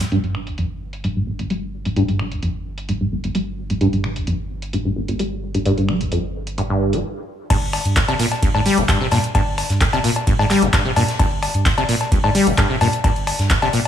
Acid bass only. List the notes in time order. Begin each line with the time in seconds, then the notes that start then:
0.01 G2
0.12 G2
0.24 G2
0.35 G3
0.47 G1
0.58 F2
1.04 G2
1.16 G2
1.27 G1
1.39 G1
1.50 G3
1.86 G2
1.96 G2
2.09 G2
2.20 G3
2.32 G1
2.43 F2
2.89 G2
3.01 G2
3.12 G1
3.24 G1
3.35 G3
3.70 G2
3.81 G2
3.93 G2
4.04 G3
4.16 G1
4.27 F2
4.73 G2
4.85 G2
4.96 G1
5.08 G1
5.20 G3
5.55 G2
5.66 G2
5.78 G2
5.89 G3
6.01 G1
6.12 F2
6.58 G2
6.70 G2
6.93 G3
7.50 G2
8.09 C3
8.20 A#2
8.43 G2
8.55 G#2
8.66 G3
8.78 G2
8.89 G2
9.01 C3
9.12 A#2
9.35 G2
9.93 C3
10.04 A#2
10.27 G2
10.39 G#2
10.50 G3
10.62 G2
10.73 G2
10.85 C3
10.96 A#2
11.20 G2
11.78 C3
11.89 A#2
12.12 G2
12.24 G#2
12.35 G3
12.47 G2
12.58 G2
12.70 C3
12.81 A#2
13.04 G2
13.62 C3
13.73 A#2